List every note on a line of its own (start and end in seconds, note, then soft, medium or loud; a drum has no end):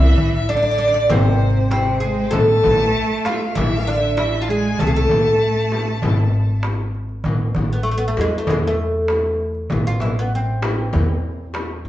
0.00 0.16 C2 loud
0.00 0.49 E3 medium
0.00 0.49 E4 medium
0.00 0.34 E5 medium
0.00 darbuka ka soft
0.18 1.07 A1 medium
0.18 darbuka dum medium
0.33 0.52 E5 medium
0.33 darbuka ka soft
0.49 1.11 D3 medium
0.49 0.56 D4 medium
0.49 1.13 D5 medium
0.49 darbuka ka soft
0.57 0.61 D4 medium
0.63 0.70 D4 medium
0.63 darbuka ka soft
0.71 0.77 D4 medium
0.78 0.86 D4 medium
0.88 0.93 D4 medium
0.94 1.02 D4 medium
1.09 2.29 G#1 loud
1.09 1.71 C3 medium
1.09 1.70 C4 medium
1.09 1.72 C5 medium
1.09 frame drum loud
1.09 darbuka dum medium
1.71 2.05 C3 medium
1.71 2.00 C4 medium
1.71 2.36 C5 medium
1.71 darbuka tek medium
1.71 frame drum medium
2.00 2.36 G#3 medium
2.00 2.30 G#4 medium
2.00 darbuka ka soft
2.18 darbuka ka soft
2.31 2.62 A1 loud
2.31 3.59 A3 medium
2.31 3.20 A4 medium
2.31 3.28 A5 medium
2.31 frame drum medium
2.31 darbuka dum medium
2.50 darbuka ka soft
2.64 2.94 A1 loud
2.64 darbuka dum medium
2.64 frame drum medium
2.79 darbuka ka soft
2.95 darbuka ka soft
3.10 darbuka ka soft
3.25 3.55 F4 medium
3.25 3.34 F5 medium
3.25 darbuka tek medium
3.25 frame drum medium
3.33 3.42 E5 medium
3.41 3.57 F5 medium
3.55 4.76 A1 medium
3.55 3.87 E3 medium
3.55 3.87 E4 medium
3.55 4.17 E5 medium
3.55 darbuka dum medium
3.55 frame drum medium
3.86 4.19 D3 medium
3.86 4.19 D4 medium
4.17 4.50 E3 medium
4.17 4.41 E4 medium
4.17 4.43 E5 medium
4.17 darbuka tek medium
4.17 frame drum medium
4.41 4.49 F4 medium
4.41 4.50 A5 medium
4.48 4.82 G#3 medium
4.48 4.80 G#4 medium
4.48 4.80 G#5 medium
4.64 darbuka ka soft
4.79 5.09 C2 loud
4.79 4.94 A3 medium
4.79 4.86 A4 medium
4.79 4.93 A5 medium
4.79 darbuka dum loud
4.79 frame drum medium
4.87 4.93 G#4 medium
4.94 6.60 A3 medium
4.94 6.61 A4 medium
4.94 6.60 A5 medium
4.94 darbuka ka soft
5.09 5.99 A1 medium
5.09 darbuka dum medium
5.09 frame drum medium
5.26 darbuka ka soft
5.41 darbuka ka soft
5.56 darbuka ka soft
5.72 frame drum medium
6.02 7.22 G#1 loud
6.02 darbuka dum medium
6.02 frame drum medium
6.18 darbuka ka soft
6.63 darbuka tek medium
6.63 frame drum medium
6.95 darbuka ka soft
7.09 darbuka ka soft
7.24 7.54 A1 loud
7.24 darbuka dum medium
7.24 frame drum medium
7.39 darbuka ka soft
7.55 8.14 A1 medium
7.55 darbuka dum medium
7.55 frame drum medium
7.71 7.82 B3 medium
7.71 darbuka ka soft
7.83 7.90 A3 medium
7.83 darbuka ka soft
7.91 7.94 A3 medium
7.98 8.07 B3 medium
7.98 darbuka ka soft
8.08 8.18 A3 medium
8.17 8.47 E2 loud
8.17 8.35 G#3 medium
8.17 frame drum medium
8.38 8.50 A3 medium
8.47 9.68 E2 loud
8.47 8.66 G#3 medium
8.47 darbuka dum medium
8.47 frame drum medium
8.67 9.49 A3 medium
9.08 darbuka tek medium
9.08 frame drum medium
9.40 darbuka ka soft
9.55 darbuka ka soft
9.70 10.90 A1 loud
9.70 darbuka dum medium
9.70 frame drum medium
9.86 9.99 F4 medium
9.86 darbuka ka soft
10.00 10.18 E4 medium
10.00 frame drum medium
10.16 10.34 B3 medium
10.16 darbuka ka soft
10.33 11.58 C4 medium
10.33 darbuka ka soft
10.48 darbuka ka soft
10.62 darbuka tek medium
10.62 frame drum medium
10.93 11.82 E2 medium
10.93 frame drum medium
10.93 darbuka dum medium
11.54 darbuka tek medium
11.54 frame drum medium
11.85 11.89 A1 medium
11.85 darbuka ka soft